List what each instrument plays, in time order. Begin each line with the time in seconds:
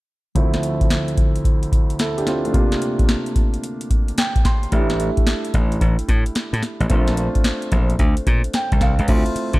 0.35 grand piano D2 F3 A3 C4 E4, kick, closed hi-hat
0.54 snare, closed hi-hat
0.63 closed hi-hat
0.81 kick, closed hi-hat
0.90 snare, closed hi-hat
1.08 closed hi-hat
1.17 kick, closed hi-hat
1.36 closed hi-hat
1.45 kick, closed hi-hat
1.63 closed hi-hat
1.72 kick, closed hi-hat
1.90 closed hi-hat
1.99 grand piano E4 A4, snare, closed hi-hat
2.17 grand piano D4 G4, closed hi-hat
2.27 grand piano C4 F4, snare, closed hi-hat
2.45 grand piano A3 D4, closed hi-hat
2.53 grand piano C3 G3 A#3 D4 F4, kick, closed hi-hat
2.72 snare, closed hi-hat
2.82 closed hi-hat
2.99 kick, closed hi-hat
3.09 snare, closed hi-hat
3.26 closed hi-hat
3.36 kick, closed hi-hat
3.54 closed hi-hat
3.64 closed hi-hat
3.81 closed hi-hat
3.90 kick, closed hi-hat
4.08 closed hi-hat
4.18 grand piano G5, snare, closed hi-hat
4.36 kick, closed hi-hat
4.45 grand piano C6, kick, snare, closed hi-hat
4.63 closed hi-hat
4.72 slap bass A1, grand piano G3 A3 D4 E4, kick, closed hi-hat
4.90 snare, closed hi-hat
5.00 closed hi-hat
5.17 kick, closed hi-hat
5.27 snare, closed hi-hat
5.45 closed hi-hat
5.54 slap bass A1, kick, closed hi-hat
5.72 closed hi-hat
5.81 slap bass A1, kick, closed hi-hat
5.99 closed hi-hat
6.08 slap bass A2, kick, closed hi-hat
6.26 closed hi-hat
6.35 snare, closed hi-hat
6.53 slap bass A2, closed hi-hat
6.63 snare, closed hi-hat
6.80 slap bass A1, closed hi-hat
6.90 slap bass A#1, grand piano A3 C4 D4 F4, kick, closed hi-hat
7.07 snare, closed hi-hat
7.17 closed hi-hat
7.35 kick, closed hi-hat
7.44 snare, closed hi-hat
7.62 closed hi-hat
7.72 slap bass A#1, kick, closed hi-hat
7.90 closed hi-hat
7.99 slap bass D2, kick, closed hi-hat
8.17 closed hi-hat
8.27 slap bass A#2, kick, closed hi-hat
8.44 closed hi-hat
8.54 grand piano G5, snare, closed hi-hat
8.72 slap bass C2, kick, closed hi-hat
8.81 slap bass C2, grand piano F5, kick, snare, closed hi-hat
8.99 slap bass C#2, closed hi-hat
9.08 slap bass D2, grand piano A3 C4 E4 F4, kick, closed hi-hat, crash
9.26 closed hi-hat
9.35 muted slap bass stroke, closed hi-hat
9.53 slap bass D3, kick, closed hi-hat